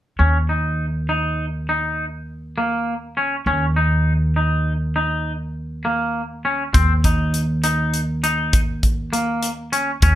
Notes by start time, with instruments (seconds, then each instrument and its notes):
0.19 upright bass D#2, clean electric guitar C#4
0.49 clean electric guitar D#4
1.09 clean electric guitar D#4
1.69 clean electric guitar D#4
2.58 clean electric guitar A#3
3.17 clean electric guitar C#4
3.46 upright bass D#2, clean electric guitar C#4
3.76 clean electric guitar D#4
4.36 clean electric guitar D#4
4.96 clean electric guitar D#4
5.85 clean electric guitar A#3
6.45 clean electric guitar C#4
6.74 upright bass D#2, clean electric guitar C4, kick, closed hi-hat
7.04 clean electric guitar D#4, kick, closed hi-hat
7.34 closed hi-hat
7.64 clean electric guitar D#4, closed hi-hat
7.94 closed hi-hat
8.24 clean electric guitar D#4, closed hi-hat
8.53 kick, closed hi-hat
8.83 kick, closed hi-hat
9.13 clean electric guitar A#3, closed hi-hat
9.43 closed hi-hat
9.72 clean electric guitar C#4, closed hi-hat
10.02 upright bass D#2, clean electric guitar C#4, kick, closed hi-hat